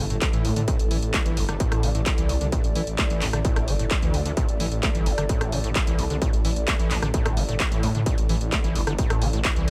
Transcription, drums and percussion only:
0.10 closed hi-hat
0.22 kick, clap, closed hi-hat
0.33 closed hi-hat
0.45 open hi-hat
0.56 closed hi-hat
0.68 kick, closed hi-hat
0.79 closed hi-hat
0.91 open hi-hat
1.02 closed hi-hat
1.14 kick, clap, closed hi-hat
1.26 closed hi-hat
1.37 open hi-hat
1.49 cross-stick, closed hi-hat
1.60 kick, closed hi-hat
1.72 cross-stick, closed hi-hat
1.83 open hi-hat
1.95 closed hi-hat
2.06 kick, clap, closed hi-hat
2.18 closed hi-hat
2.29 open hi-hat
2.41 closed hi-hat
2.52 kick, closed hi-hat
2.64 closed hi-hat
2.75 open hi-hat
2.87 closed hi-hat
2.98 kick, clap, closed hi-hat
3.10 closed hi-hat
3.22 clap, open hi-hat
3.33 cross-stick, closed hi-hat
3.45 kick, closed hi-hat
3.56 cross-stick, closed hi-hat
3.68 open hi-hat
3.79 closed hi-hat
3.91 kick, clap, closed hi-hat
4.02 closed hi-hat
4.14 open hi-hat
4.26 closed hi-hat
4.37 kick, closed hi-hat
4.49 closed hi-hat
4.60 open hi-hat
4.72 closed hi-hat
4.83 kick, clap, closed hi-hat
4.95 closed hi-hat
5.06 open hi-hat
5.18 cross-stick, closed hi-hat
5.29 kick, closed hi-hat
5.41 cross-stick, closed hi-hat
5.52 open hi-hat
5.64 closed hi-hat
5.75 kick, clap, closed hi-hat
5.87 closed hi-hat
5.99 open hi-hat
6.10 closed hi-hat
6.22 kick, closed hi-hat
6.33 closed hi-hat
6.45 open hi-hat
6.56 closed hi-hat
6.68 kick, clap, closed hi-hat
6.79 closed hi-hat
6.91 clap, open hi-hat
7.02 cross-stick, closed hi-hat
7.14 kick, closed hi-hat
7.26 cross-stick, closed hi-hat
7.37 open hi-hat
7.49 closed hi-hat
7.60 kick, clap, closed hi-hat
7.72 closed hi-hat
7.83 open hi-hat
7.95 closed hi-hat
8.06 kick, closed hi-hat
8.18 closed hi-hat
8.29 open hi-hat
8.41 closed hi-hat
8.52 kick, clap, closed hi-hat
8.64 closed hi-hat
8.75 open hi-hat
8.87 cross-stick, closed hi-hat
8.98 kick, closed hi-hat
9.10 cross-stick, closed hi-hat
9.22 open hi-hat
9.33 closed hi-hat
9.45 kick, clap, closed hi-hat
9.56 closed hi-hat

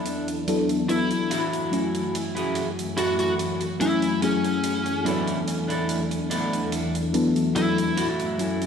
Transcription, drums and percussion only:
0.06 closed hi-hat
0.28 closed hi-hat
0.48 closed hi-hat
0.69 closed hi-hat
0.89 closed hi-hat
1.11 closed hi-hat
1.31 closed hi-hat
1.53 closed hi-hat
1.73 closed hi-hat
1.95 closed hi-hat
2.15 closed hi-hat
2.37 closed hi-hat
2.55 closed hi-hat
2.79 closed hi-hat
2.98 closed hi-hat
3.19 closed hi-hat
3.39 closed hi-hat
3.61 closed hi-hat
3.81 closed hi-hat
4.02 closed hi-hat
4.22 closed hi-hat
4.44 closed hi-hat
4.64 closed hi-hat
4.86 closed hi-hat
5.06 closed hi-hat
5.27 closed hi-hat
5.48 closed hi-hat
5.70 closed hi-hat
5.89 closed hi-hat
6.11 closed hi-hat
6.31 closed hi-hat
6.53 closed hi-hat
6.72 closed hi-hat
6.95 closed hi-hat
7.14 closed hi-hat
7.36 closed hi-hat
7.56 closed hi-hat
7.78 closed hi-hat
7.97 closed hi-hat
8.20 closed hi-hat
8.39 closed hi-hat
8.62 closed hi-hat

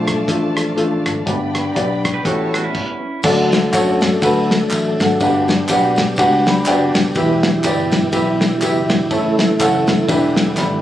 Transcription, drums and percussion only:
0.08 kick, cross-stick, closed hi-hat
0.28 kick, closed hi-hat
0.57 cross-stick, closed hi-hat
0.78 closed hi-hat
1.06 kick, cross-stick, closed hi-hat
1.27 kick, closed hi-hat
1.55 cross-stick, closed hi-hat
1.76 kick, closed hi-hat
2.05 kick, cross-stick, closed hi-hat
2.25 kick, closed hi-hat
2.54 cross-stick, closed hi-hat
2.75 kick, crash
3.23 kick, crash, tambourine
3.52 snare, ride, tambourine
3.73 kick, clap, ride, tambourine
4.01 kick, snare, ride, tambourine
4.22 kick, ride, tambourine
4.51 snare, ride, tambourine
4.70 clap, ride, tambourine
5.00 kick, snare, ride, tambourine
5.20 kick, ride, tambourine
5.48 snare, ride, tambourine
5.68 kick, clap, ride, tambourine
5.96 kick, snare, ride, tambourine
6.16 kick, ride, tambourine
6.46 snare, ride, tambourine
6.66 clap, ride, tambourine
6.95 kick, snare, ride, tambourine
7.15 kick, ride, tambourine
7.43 snare, ride, tambourine
7.64 kick, clap, ride, tambourine
7.91 kick, snare, ride, tambourine
8.12 kick, ride, tambourine
8.41 snare, ride, tambourine
8.61 clap, ride, tambourine
8.90 kick, snare, ride, tambourine
9.11 kick, ride, tambourine
9.39 snare, ride, tambourine
9.60 kick, clap, ride, tambourine
9.87 kick, snare, ride, tambourine
10.08 kick, ride, tambourine
10.36 snare, ride, tambourine
10.57 snare, clap, tambourine

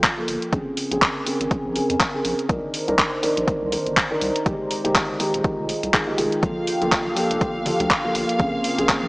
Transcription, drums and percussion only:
0.03 kick, clap, closed hi-hat
0.28 open hi-hat
0.42 closed hi-hat
0.53 kick, closed hi-hat
0.77 open hi-hat
0.92 closed hi-hat
1.02 kick, clap, closed hi-hat
1.26 open hi-hat
1.41 closed hi-hat
1.51 kick, closed hi-hat
1.76 open hi-hat
1.90 closed hi-hat
2.00 kick, clap, closed hi-hat
2.25 open hi-hat
2.39 closed hi-hat
2.49 kick, closed hi-hat
2.74 open hi-hat
2.88 closed hi-hat
2.98 kick, clap, closed hi-hat
3.23 open hi-hat
3.37 closed hi-hat
3.48 kick, closed hi-hat
3.72 open hi-hat
3.87 closed hi-hat
3.97 kick, clap, closed hi-hat
4.21 open hi-hat
4.36 closed hi-hat
4.46 kick, closed hi-hat
4.71 open hi-hat
4.85 closed hi-hat
4.95 kick, clap, closed hi-hat
5.20 open hi-hat
5.34 closed hi-hat
5.44 kick, closed hi-hat
5.69 open hi-hat
5.83 closed hi-hat
5.94 kick, clap, closed hi-hat
6.18 open hi-hat
6.32 closed hi-hat
6.43 kick, closed hi-hat, high conga
6.67 open hi-hat
6.82 closed hi-hat
6.92 kick, clap, closed hi-hat
7.07 high conga
7.16 open hi-hat, high bongo
7.31 closed hi-hat
7.41 kick, closed hi-hat
7.66 open hi-hat, high bongo, low conga
7.80 closed hi-hat, high conga
7.90 kick, clap, closed hi-hat
8.05 high bongo
8.15 open hi-hat
8.29 closed hi-hat
8.39 kick, closed hi-hat, high conga
8.64 open hi-hat
8.78 closed hi-hat
8.89 kick, clap, closed hi-hat
9.03 high conga

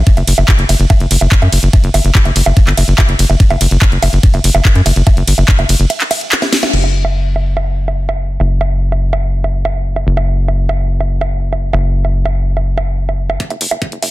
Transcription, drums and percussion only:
0.07 kick, closed hi-hat, ride
0.17 closed hi-hat, high bongo
0.27 open hi-hat, ride
0.38 closed hi-hat, high bongo
0.48 kick, clap, closed hi-hat, ride
0.59 closed hi-hat
0.69 open hi-hat, ride, high bongo
0.80 closed hi-hat
0.90 kick, closed hi-hat, ride, high bongo
1.00 closed hi-hat
1.11 open hi-hat, ride
1.21 closed hi-hat, high bongo
1.32 kick, clap, closed hi-hat, ride
1.42 closed hi-hat, high bongo
1.52 open hi-hat, ride
1.63 closed hi-hat
1.73 kick, closed hi-hat, ride, high bongo
1.84 closed hi-hat
1.94 open hi-hat, ride, high bongo
2.05 closed hi-hat
2.15 kick, clap, closed hi-hat, ride
2.25 closed hi-hat, high bongo
2.36 open hi-hat, ride
2.46 closed hi-hat, high bongo
2.57 kick, closed hi-hat, ride
2.67 clap, closed hi-hat
2.77 open hi-hat, ride, high bongo
2.88 closed hi-hat
2.98 kick, clap, closed hi-hat, ride, high bongo
3.09 closed hi-hat
3.19 open hi-hat, ride
3.30 closed hi-hat, high bongo
3.40 kick, closed hi-hat, ride
3.50 closed hi-hat, high bongo
3.61 open hi-hat, ride
3.71 closed hi-hat
3.82 kick, clap, closed hi-hat, ride, high bongo
3.92 closed hi-hat
4.03 open hi-hat, ride, high bongo
4.13 closed hi-hat
4.23 kick, closed hi-hat, ride
4.34 closed hi-hat, high bongo
4.44 open hi-hat, ride
4.55 closed hi-hat, high bongo
4.65 kick, clap, closed hi-hat, ride
4.75 closed hi-hat
4.86 open hi-hat, ride, high bongo
4.96 closed hi-hat
5.07 kick, closed hi-hat, ride, high bongo
5.17 closed hi-hat
5.28 open hi-hat, ride
5.38 closed hi-hat, high bongo
5.48 kick, clap, closed hi-hat, ride
5.59 closed hi-hat, high bongo
5.69 open hi-hat, ride
5.80 closed hi-hat
5.90 closed hi-hat, ride, high bongo
6.00 clap, closed hi-hat
6.11 open hi-hat, ride, high bongo
6.21 closed hi-hat
6.32 clap, closed hi-hat, ride
6.42 snare, closed hi-hat, high bongo
6.53 snare, open hi-hat, ride
6.63 snare, closed hi-hat, high bongo
6.73 crash
6.84 high bongo
7.05 high bongo
7.36 high bongo
7.57 high bongo
7.88 high bongo
8.09 high bongo
8.40 high bongo
8.61 high bongo
8.92 high bongo
9.13 high bongo
9.44 high bongo
9.65 high bongo
9.96 high bongo
10.17 high bongo
10.48 high bongo
10.69 high bongo
11.00 high bongo
11.21 high bongo
11.53 high bongo
11.73 high bongo
12.05 high bongo
12.25 high bongo
12.57 high bongo
12.78 high bongo
13.09 high bongo
13.30 high bongo
13.40 kick, closed hi-hat
13.50 closed hi-hat, high bongo
13.61 open hi-hat
13.71 high bongo
13.82 kick, closed hi-hat
13.92 closed hi-hat
14.03 open hi-hat, high bongo

